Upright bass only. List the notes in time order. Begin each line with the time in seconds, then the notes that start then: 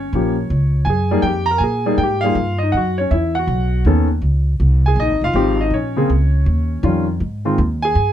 Already playing: G1
0.13 A#1
0.50 C#2
0.86 F#2
1.23 F2
1.60 A#2
1.98 G#2
2.35 G2
2.74 F#2
3.11 E2
3.47 B1
3.85 D#2
4.22 C#2
4.60 C2
4.96 A#1
5.09 G#1
5.21 F1
5.33 G#1
5.70 A#1
6.10 C#2
6.46 D#2
6.83 F2
7.20 G#2
7.58 D#2
7.95 G2